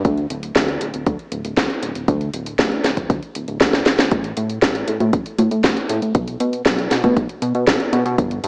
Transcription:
0.05 0.27 D2 medium
0.05 kick loud
0.05 closed hi-hat medium
0.18 closed hi-hat soft
0.30 0.52 D1 medium
0.30 closed hi-hat medium
0.43 closed hi-hat medium
0.56 0.77 D2 medium
0.56 kick loud
0.56 snare loud
0.56 closed hi-hat medium
0.68 closed hi-hat soft
0.81 0.92 D1 medium
0.81 closed hi-hat medium
0.94 1.05 D1 medium
0.94 closed hi-hat medium
1.06 1.17 D2 medium
1.06 kick loud
1.06 closed hi-hat medium
1.19 closed hi-hat soft
1.32 1.43 D1 medium
1.32 closed hi-hat medium
1.45 1.56 D1 medium
1.45 closed hi-hat medium
1.57 1.68 D2 medium
1.57 kick loud
1.57 snare loud
1.57 closed hi-hat medium
1.70 closed hi-hat soft
1.83 1.94 D1 loud
1.83 closed hi-hat medium
1.95 2.06 D1 medium
1.95 closed hi-hat medium
2.08 2.30 D2 loud
2.08 kick loud
2.08 closed hi-hat medium
2.21 closed hi-hat soft
2.34 2.55 D1 medium
2.34 closed hi-hat medium
2.46 closed hi-hat medium
2.59 2.81 D2 medium
2.59 kick loud
2.59 snare loud
2.59 closed hi-hat medium
2.72 closed hi-hat soft
2.84 2.95 D1 medium
2.84 snare medium
2.84 closed hi-hat loud
2.97 3.08 D1 loud
2.97 kick medium
2.97 closed hi-hat medium
3.10 3.21 D2 medium
3.10 kick loud
3.10 closed hi-hat medium
3.23 closed hi-hat soft
3.35 3.46 D1 medium
3.35 closed hi-hat loud
3.48 3.59 D1 medium
3.48 closed hi-hat medium
3.61 3.83 D2 loud
3.61 kick loud
3.61 snare loud
3.61 closed hi-hat medium
3.73 snare medium
3.73 closed hi-hat soft
3.86 3.97 D1 loud
3.86 snare medium
3.86 closed hi-hat medium
3.99 4.10 D1 loud
3.99 snare medium
3.99 closed hi-hat medium
4.11 4.33 A1 loud
4.11 kick loud
4.11 closed hi-hat medium
4.24 closed hi-hat soft
4.37 4.59 A2 medium
4.37 closed hi-hat loud
4.50 closed hi-hat soft
4.62 4.84 A1 medium
4.62 kick loud
4.62 snare loud
4.62 closed hi-hat medium
4.75 closed hi-hat soft
4.88 4.99 A2 medium
4.88 closed hi-hat loud
5.00 5.11 A2 loud
5.00 closed hi-hat soft
5.00 high conga medium
5.13 5.24 A1 medium
5.13 kick loud
5.13 closed hi-hat medium
5.26 closed hi-hat soft
5.39 5.50 A2 medium
5.39 closed hi-hat loud
5.39 high conga medium
5.51 5.62 A2 medium
5.51 closed hi-hat soft
5.64 5.75 A1 medium
5.64 kick loud
5.64 snare loud
5.64 closed hi-hat medium
5.64 high conga medium
5.77 closed hi-hat soft
5.89 6.00 A2 loud
5.89 closed hi-hat loud
6.02 6.13 A2 medium
6.02 closed hi-hat soft
6.15 6.37 B1 medium
6.15 kick loud
6.15 closed hi-hat medium
6.28 closed hi-hat soft
6.40 6.62 B2 medium
6.40 closed hi-hat loud
6.53 closed hi-hat soft
6.66 6.88 B1 medium
6.66 kick loud
6.66 snare loud
6.66 closed hi-hat medium
6.79 closed hi-hat soft
6.91 7.02 B2 medium
6.91 snare medium
6.91 closed hi-hat loud
7.04 7.15 B2 loud
7.04 kick medium
7.04 closed hi-hat soft
7.04 high conga medium
7.17 7.28 B1 medium
7.17 kick loud
7.17 closed hi-hat medium
7.29 closed hi-hat soft
7.42 7.53 B2 medium
7.42 closed hi-hat loud
7.55 7.66 B2 medium
7.55 closed hi-hat soft
7.67 7.78 B1 medium
7.67 kick loud
7.67 snare loud
7.67 closed hi-hat medium
7.80 closed hi-hat soft
7.93 8.04 B2 loud
7.93 closed hi-hat loud
8.06 8.17 B2 loud
8.06 closed hi-hat soft
8.18 8.40 G1 medium
8.18 kick loud
8.18 closed hi-hat medium
8.31 closed hi-hat soft
8.44 8.48 G2 medium
8.44 closed hi-hat medium

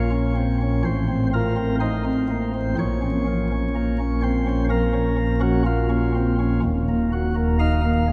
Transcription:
0.00 0.83 A#1 medium
0.00 0.83 A#2 medium
0.00 0.83 C#5 loud
0.11 0.34 C#4 soft
0.36 0.58 C4 soft
0.61 0.82 C#4 soft
0.84 2.75 A1 medium
0.84 2.74 A2 medium
0.84 1.27 C5 medium
1.08 1.31 C4 medium
1.33 1.55 F4 medium
1.33 1.75 A#4 loud
1.56 1.79 C4 medium
1.80 2.03 D#4 medium
1.80 2.75 C5 loud
2.04 2.27 C4 soft
2.30 2.51 A#3 soft
2.54 2.75 C4 soft
2.78 6.60 A#1 medium
2.78 6.59 A#2 medium
2.78 4.21 C#5 loud
3.02 3.25 C#4 soft
3.27 3.50 F3 medium
3.52 3.74 C#4 medium
3.75 3.98 A#3 medium
4.00 4.22 C#4 soft
4.23 4.44 C4 soft
4.23 4.64 C5 medium
4.47 4.69 C#4 medium
4.70 4.92 F3 soft
4.70 5.41 A#4 loud
4.93 5.16 C#4 medium
5.18 5.40 F3 medium
5.40 5.63 C#4 soft
5.40 5.62 F#4 medium
5.66 5.88 A#3 medium
5.66 6.60 F4 medium
5.90 6.12 C#4 medium
6.15 6.36 C4 medium
6.39 6.60 C#4 medium
6.63 8.12 D#1 medium
6.63 8.12 D#2 medium
6.89 7.10 A#3 medium
7.13 7.34 F#4 medium
7.35 7.57 A#3 medium
7.59 7.81 D#4 medium
7.59 8.12 F5 loud
7.84 8.05 A#3 medium
8.07 8.12 G#3 soft

